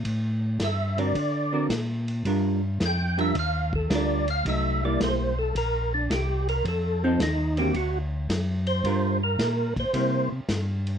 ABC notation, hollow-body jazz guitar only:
X:1
M:4/4
L:1/8
Q:"Swing" 1/4=109
K:Gm
V:1 name="Hollow-body jazz guitar"
z3 [D,C_GB] z [D,C^F^A] z2 | [G,DFB] z2 [G,DFB] z2 [G,DFB] z | [_G,A,E] [=G,B,=E]2 z4 z | z [F,CEA] z [D,B,C_G] z4 |
[G,DFB] z3 [G,B,=E] z3 |]